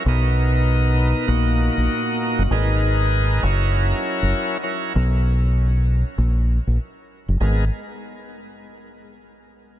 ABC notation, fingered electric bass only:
X:1
M:4/4
L:1/16
Q:"Swing 16ths" 1/4=98
K:G#m
V:1 name="Fingered electric bass" clef=bass
B,,,6- B,,, z A,,,3 A,,, z3 F,,, | G,,,6 F,,,4 z F,,, z4 | B,,,6- B,,, z A,,,3 A,,, z3 F,,, | G,,,2 z12 z2 |]